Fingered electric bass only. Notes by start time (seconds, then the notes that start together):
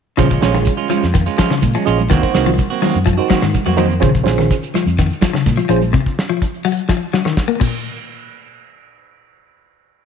0.19 A#1
0.42 A#1
1.04 F2
1.63 A#2
1.87 A#1
2.12 C2
2.35 C2
2.95 F#2
3.43 G#2
3.67 F2
4.03 A#1
4.27 A#1
4.87 F2
5.46 A#2
5.69 A#1